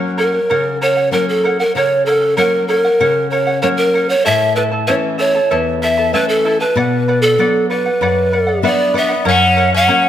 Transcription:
Already playing: F#3 A#3 C#4 A#4 C#5 F#5
0.17 A#4 C#5 F#5
0.33 C#5 F#5
0.50 C#3 A#4 C#5 F#5
0.81 A#4 C#5 F#5
0.96 C#5 F#5
1.11 F#3 A#3 C#4 A#4 C#5 F#5
1.29 A4
1.44 A#4 C#5 F#5
1.59 A#4 C#5 F#5
1.75 C#3 A#4 C#5 F#5
2.06 A4 A#4 C#5 F#5
2.21 C#5 F#5
2.37 F#3 A#3 C#4 A#4 C#5 F#5
2.68 A#4 C#5 F#5
2.84 C#5 F#5
3.00 C#3 A#4 C#5 F#5
3.30 A#4 C#5 F#5
3.47 C#5 F#5
3.62 F#3 A#3 C#4 A#4 C#5 F#5
3.77 A#4
3.94 A#4 C#5 F#5
4.09 C#5 F#5
4.25 A2 E4 A4 C#5 E5 A5
4.56 E4 A4 B4 E5 A5
4.72 E4 A4 A5
4.87 E3 A3 C#4 E4 A4 C#5 E5 A5
5.18 E4 A4 C#5 E5 A5
5.35 E4 A4 A5
5.51 E2 E4 A4 C#5 E5 A5
5.82 E4 A4 E5 A5
5.98 E4 A4 A5
6.13 E3 A3 C#4 E4 A4 B4 C#5 E5 A5
6.29 A4
6.45 E4 A4 E5 A5
6.60 E4 A4 B4 A5
6.76 B2 B4 D5 F#5
7.08 B4 D5 F#5
7.22 A4 D5 F#5
7.38 F#3 B3 D4 B4 D5 F#5
7.70 B4 D5 F#5
7.86 D5 F#5
8.01 F#2 B4 D5 F#5
8.32 B4 D5 F#5
8.47 D5 F#5
8.62 F#3 B3 D4 B4 D5 E5 F#5
8.66 D5
8.94 B3 B4 D5 E5 F#5
9.09 D5 F#5
9.25 F#2 C#4 A#4 C#5 F#5
9.56 A#4 C#5 F#5
9.73 C#4 C#5 F#5
9.88 F#3 A#3 C#4 A#4 C#5 F#5

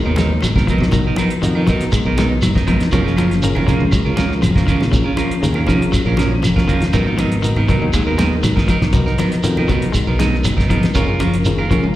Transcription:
Already playing: G#3 B3 D#4 F#4 A#4
0.05 D#2 B3 D#4 A#4
0.16 F#3 G#3 B3 D#4 A#4, snare, closed hi-hat, high conga, shekere
0.41 G#1 F#3, closed hi-hat, high conga, claves, shekere
0.45 snare
0.56 B3 D#4 A#4, kick, snare
0.67 F3 F#3 B3 D#4 A#4, kick, closed hi-hat, claves, shekere
0.78 B1, snare, high conga
0.92 F#3 B3 D#4 F#4 A#4, kick, closed hi-hat, high conga, low conga, shekere
1.07 B3 D#4 A#4
1.16 F3 F#3 B3 D#4 A#4, closed hi-hat, high conga, claves, shekere
1.30 closed hi-hat
1.42 F2 D#3 B3 D#4 F#4 A#4, closed hi-hat, shekere
1.55 B3 D#4 A#4, claves
1.67 F#3 B3 D#4 F#4 A#4, kick, snare, closed hi-hat, high conga, low conga, shekere
1.81 snare, closed hi-hat
1.92 G#3, muted fingered electric bass stroke, kick, closed hi-hat, high conga, claves, shekere
2.05 B1 B3 D#4 A#4
2.17 F#3 G#3 B3 D#4 A#4, snare, closed hi-hat, high conga, shekere
2.42 F#1 F#3, closed hi-hat, high conga, claves, shekere
2.55 B3 D#4 A#4, kick, snare, high conga
2.67 G#1 F3 F#3 B3 D#4 A#4, kick, closed hi-hat, claves, shekere
2.80 snare, closed hi-hat, high conga
2.92 F#1 F3 F#3 C#4 F4 G#4 A#4, kick, snare, closed hi-hat, high conga, low conga, shekere
3.04 C#4 F4 A#4, snare
3.16 F3 C#4 F4 A#4, closed hi-hat, high conga, claves, shekere
3.31 snare, closed hi-hat
3.42 D#3 C#4 F4 G#4 A#4, closed hi-hat, high conga, shekere
3.55 F#1 C#4 F4 A#4, low conga, claves
3.67 F3 C#4 F4 G#4 A#4, kick, snare, closed hi-hat, high conga, low conga, shekere
3.81 C#2
3.91 C#2 F#3, kick, closed hi-hat, claves, shekere
4.05 C#2 C#4 F4 A#4
4.16 F3 F#3 C#4 F4 A#4, snare, closed hi-hat, high conga, shekere
4.32 snare
4.42 F#1 F3, closed hi-hat, high conga, claves, shekere
4.56 C#4 F4 A#4, kick, snare
4.67 D#3 F3 C#4 F4 A#4, kick, closed hi-hat, claves, shekere
4.80 A#1, snare, high conga
4.92 F#3 C#4 F4 G#4 A#4, kick, closed hi-hat, high conga, low conga, shekere
5.04 C#4 F4 A#4
5.17 F3 C#4 F4 A#4, closed hi-hat, high conga, claves, shekere
5.31 closed hi-hat
5.42 D#2 D#3 C#4 F4 G#4 A#4, closed hi-hat, high conga, shekere
5.54 C#4 F4 A#4, low conga, claves
5.67 F3 C#4 F4 G#4 A#4, kick, closed hi-hat, low conga, shekere
5.82 closed hi-hat
5.91 F#3, muted fingered electric bass stroke, kick, closed hi-hat, high conga, claves, shekere
6.06 A#1 C#4 F4 A#4
6.17 F3 F#3 C#4 A#4, snare, closed hi-hat, high conga, shekere
6.43 F1 F3, snare, closed hi-hat, high conga, claves, shekere
6.56 C#4 F4 A#4, kick, snare
6.68 F#1 D#3 F3 C#4 F4 A#4, kick, closed hi-hat, claves, shekere
6.81 snare, closed hi-hat, high conga
6.93 G#1 F#3 B3 D#4 F#4 A#4, kick, closed hi-hat, high conga, low conga, shekere
7.06 B3 D#4 A#4
7.18 F3 F#3 B3 D#4 A#4, closed hi-hat, high conga, claves, shekere
7.32 closed hi-hat
7.42 D#3 B3 D#4 F#4 A#4, closed hi-hat, shekere
7.56 G#1 B3 D#4 A#4, low conga, claves
7.68 F#3 B3 D#4 F#4 A#4, kick, closed hi-hat, low conga, shekere
7.82 D#2
7.93 D#2 G#3, kick, closed hi-hat, claves, shekere
8.07 D#2 B3 D#4 A#4
8.18 F#3 G#3 B3 D#4 A#4, snare, closed hi-hat, high conga, shekere
8.43 G#1 F#3, closed hi-hat, high conga, claves, shekere
8.56 B3 D#4 A#4, kick, snare, high conga
8.68 F3 F#3 D#4 A#4, kick, closed hi-hat, claves, shekere
8.82 B1, snare, high conga
8.93 F#3 B3 D#4 F#4 A#4, kick, snare, closed hi-hat, high conga, low conga, shekere
9.06 D#4 A#4, snare
9.18 F3 F#3 B3 D#4 A#4, snare, closed hi-hat, high conga, claves, shekere
9.32 snare, closed hi-hat
9.43 F2 D#3 B3 D#4 F#4 A#4, closed hi-hat, shekere
9.57 B3 D#4 A#4, low conga, claves
9.68 F#3 B3 D#4 F#4 A#4, kick, closed hi-hat, high conga, low conga, shekere
9.82 closed hi-hat
9.92 G#3, muted fingered electric bass stroke, kick, closed hi-hat, claves, shekere
10.07 B1 B3 D#4 A#4
10.19 F#3 G#3 B3 D#4 A#4, snare, closed hi-hat, high conga, shekere
10.34 snare
10.44 F#1 F#3, closed hi-hat, high conga, claves, shekere
10.57 B3 D#4 A#4, kick, snare
10.69 G#1 F3 F#3 B3 D#4 A#4, kick, closed hi-hat, claves, shekere
10.83 snare, closed hi-hat, high conga
10.94 F#1 F#3 C#4 F4 G#4 A#4, kick, closed hi-hat, high conga, low conga, shekere
11.08 F4 A#4
11.19 F3 C#4 F4 A#4, closed hi-hat, high conga, claves, shekere
11.34 closed hi-hat
11.45 D#3 C#4 F4 G#4 A#4, closed hi-hat, shekere
11.58 F#1 F4 A#4, claves
11.70 F3 C#4 F4 G#4 A#4, kick, closed hi-hat, low conga, shekere
11.84 C#2

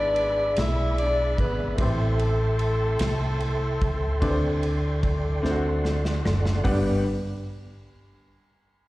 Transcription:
Already playing: G#1 G#2 G#3 B3 D4 E4 G#4 B4 D5 E5 B5
0.16 ride bell
0.56 B1 E4 E5, snare, ride bell
0.98 D4 D5, ride bell
1.38 G#1 B3 B4, kick, ride bell
1.75 A1 A2 A3 C4 E4, kick, ride bell
1.79 A3 G4 A4 C5 G5 C6
2.19 ride bell
2.59 ride bell
2.99 C2, snare, ride bell
3.40 ride bell
3.81 C#2, kick, ride bell
4.20 D2 D3 A3 C4 D4 G4 B4 D5 G5, kick, ride bell
4.29 C5
4.63 ride bell
5.03 kick, ride bell
5.42 D2 D3 A3 C4 D4 E4 A4 C5 D5 F#5, snare
5.50 F#4
5.85 snare
6.05 snare
6.25 F#1, snare
6.46 snare
6.64 G1 G2 G3 B3 D4 G4 B4 D5 F#5, kick, open hi-hat

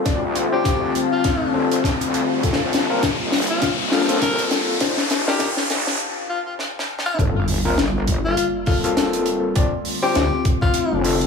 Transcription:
Already playing: F4 G4 C5 F5 A5, riser
0.05 D2 D3 A3 C4 D4 F4 D5, kick, snare, closed hi-hat
0.35 cross-stick, closed hi-hat
0.52 C4 D4 F4 G4 C5
0.64 kick, snare, closed hi-hat
0.95 closed hi-hat
1.12 F4
1.24 kick, snare, closed hi-hat
1.54 F1 C4 D4 F4 A4
1.71 closed hi-hat
1.84 C2, kick, snare, closed hi-hat
2.01 D2, cross-stick, closed hi-hat
2.14 closed hi-hat
2.43 G1 G3 A#3 C4 F4 A4, kick, closed hi-hat
2.53 snare
2.61 C2
2.73 snare, closed hi-hat
2.90 G1 A#3 C4 F4 A#4
3.03 kick, snare, closed hi-hat
3.32 G1, snare, closed hi-hat
3.35 closed hi-hat
3.38 closed hi-hat
3.41 closed hi-hat
3.47 F4, closed hi-hat
3.62 kick, snare, closed hi-hat
3.80 F1
3.92 A#3 C4 F4 A4, snare
3.97 snare
4.01 snare
4.08 G1 A#3 C4 F4 A4, snare, closed hi-hat
4.11 snare
4.17 snare
4.22 A#4, kick, snare, closed hi-hat
4.39 closed hi-hat
4.51 snare, closed hi-hat
4.80 D#1 D#3 D4 D#4 F4 G4 C5, kick, snare, closed hi-hat
4.97 snare
5.10 snare, closed hi-hat
5.27 D4 D#4 F4 G4 A#4, snare
5.39 kick, snare, closed hi-hat
5.57 snare
5.70 A#1, snare, closed hi-hat
5.87 snare
6.29 F4
6.46 F4
6.59 snare
6.79 snare
6.99 snare
7.06 F4
7.18 G1 G3 A#3 C4 F4 A4, kick, closed hi-hat, sub drop
7.48 open hi-hat
7.65 A#3 C4 F4 A#4
7.78 G1, snare, closed hi-hat
8.07 kick, closed hi-hat
8.25 F4
8.37 closed hi-hat
8.66 A#3 C4 F4 A4, kick, open hi-hat
8.84 A#3 C4 F4 A4, closed hi-hat
8.97 snare, closed hi-hat
9.13 cross-stick, closed hi-hat
9.26 closed hi-hat
9.56 D3 A3 C4 D4 F4 D5, kick, closed hi-hat
9.85 open hi-hat
10.02 C4 D4 F4 G4 C5, cross-stick
10.15 D2, snare, closed hi-hat
10.45 kick, closed hi-hat
10.62 F4, kick
10.74 cross-stick, closed hi-hat
10.92 F1
11.04 C4 D4 F4 A4, open hi-hat
11.21 closed hi-hat

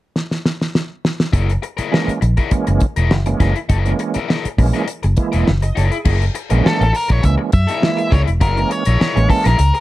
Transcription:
0.16 snare
0.31 snare
0.46 snare
0.61 snare
0.75 snare
1.05 snare
1.20 snare
1.33 F#1 E4 G#4 A#4, kick, closed hi-hat
1.50 closed hi-hat
1.62 muted overdriven electric guitar stroke, closed hi-hat
1.77 E4 G#4 A#4, muted fingered electric bass stroke, closed hi-hat
1.92 E3 G#3 A#3 C#4 E4 G#4 A#4, snare
2.08 muted fingered electric bass stroke, closed hi-hat
2.21 A#1, muted overdriven electric guitar stroke, closed hi-hat
2.37 E4 G#4 A#4, kick, closed hi-hat
2.51 E3 G#3 A#3 C#4, muted overdriven electric guitar stroke, kick, closed hi-hat
2.67 F#1, muted overdriven electric guitar stroke, closed hi-hat
2.80 kick, closed hi-hat
2.96 E1 E4 G#4 A#4, closed hi-hat
3.11 F#1, snare
3.26 E3 G#3 A#3 C#4, muted overdriven electric guitar stroke, closed hi-hat
3.40 F#1 E4 G#4 A#4, kick, snare, closed hi-hat
3.56 muted overdriven electric guitar stroke, closed hi-hat
3.69 F#1 E4 G#4 A#4, kick, closed hi-hat
3.85 E3 G#3 A#3 C#4, closed hi-hat
3.99 muted overdriven electric guitar stroke, closed hi-hat
4.14 E4 G#4 A#4, muted fingered electric bass stroke, closed hi-hat
4.28 E4 G#4 A#4, snare
4.45 muted fingered electric bass stroke, closed hi-hat
4.58 A#1 E3 G#3 A#3 C#4, muted overdriven electric guitar stroke, kick, open hi-hat
4.74 E4 G#4 A#4, closed hi-hat
4.87 muted overdriven electric guitar stroke, closed hi-hat
5.03 F#1, muted overdriven electric guitar stroke, closed hi-hat
5.17 E3 G#3 A#3 E4, kick, closed hi-hat
5.32 E1 E4 G#4 A#4, closed hi-hat
5.48 F#1, snare
5.62 D#5, muted overdriven electric guitar stroke, closed hi-hat
5.75 F#1 E4 G#4 A#4 C#5, closed hi-hat
5.91 G#4, muted overdriven electric guitar stroke, closed hi-hat
6.05 F#1 E4 G#4 A#4, kick, crash
6.22 closed hi-hat
6.35 muted overdriven electric guitar stroke, closed hi-hat
6.50 A#1 E3 G#3 A#3 C#4 E4 G#4 A#4, closed hi-hat
6.64 E4 G#4 A4 A#4, muted fingered electric bass stroke, snare
6.81 A1, closed hi-hat
6.93 A#4, muted overdriven electric guitar stroke, open hi-hat
7.08 A#1 E4 G#4 A#4 C#5, kick, closed hi-hat
7.22 C#2 E3 G#3 A#3 C#4 E5, muted overdriven electric guitar stroke, kick, closed hi-hat
7.38 muted overdriven electric guitar stroke
7.52 F#2 E5, kick, closed hi-hat
7.67 E4 G#4 A#4, closed hi-hat
7.82 E3 G#3 A#3 E4, snare
7.97 muted overdriven electric guitar stroke, closed hi-hat
8.11 C#2 E4 G#4 A#4 C#5, kick, closed hi-hat
8.27 E1, muted overdriven electric guitar stroke, closed hi-hat
8.41 F#1 E4 G#4 A#4, kick, closed hi-hat
8.57 E3 G#3 A#3 C#4, closed hi-hat
8.70 C#5, muted overdriven electric guitar stroke, closed hi-hat
8.85 A#1 E4 G#4 A#4, closed hi-hat
9.00 E4 G#4 A#4, snare
9.15 A1 E3 G#3 A#3 C#4, closed hi-hat
9.29 A4, muted overdriven electric guitar stroke, kick, open hi-hat
9.44 A#1 E4 G#4 A#4, closed hi-hat
9.58 C#2, muted overdriven electric guitar stroke, closed hi-hat
9.74 muted overdriven electric guitar stroke, closed hi-hat

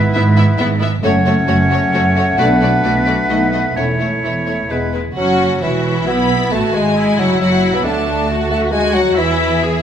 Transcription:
Already playing: B3 E4 B4 E5
0.14 G#1 G#2 B3 E4 E5
0.36 B3 E4 E5
0.58 G#1 G#2 B3 E4 E5
0.80 B3 E4 E5
1.02 F#1 F#2 A3 C#4 F#4 C#5 F#5
1.26 A3 F#4 C#5
1.48 F#1 F#2 A3 F#4 C#5
1.70 A3 F#4 C#5
1.92 F#1 F#2 A3 F#4 C#5
2.15 A3 F#4 C#5
2.37 B1 B2 A3 D4 F#4 B4 D5
2.61 A3 F#4 D5
2.83 B1 B2 A3 F#4 D5
3.07 A3 F#4 D5
3.28 B1 B2 A3 D#4 F#4 D#5
3.53 A3 F#4 D#5
3.76 E1 E2 A3 C#4 E4 C#5 E5
3.99 A3 E4 C#5
4.23 E1 E2 A3 E4 C#5
4.47 A3 E4 C#5
4.69 E1 E2 G#3 B3 E4 B4
4.93 G#3 E4 B4
5.16 F#1 F#3 C#4 F#4 F#5
5.62 E1 E3 E4 F#4 E5
6.07 B1 B3 E4 B5
6.52 A1 A3 F#4 A5
6.74 G#1 G#3 G#5
6.97 E4
7.18 F#1 F#3 F#4 F#5
7.40 F#1 F#3 F#4 F#5
7.74 B1 B3 B5
7.85 D2 A3 D4 F#4 A5
8.30 F#4
8.51 A3 A5
8.72 G#3 F#4 G#5
8.95 F#3 F#5
9.17 E2 E3 E4 G#4 E5
9.63 G#4

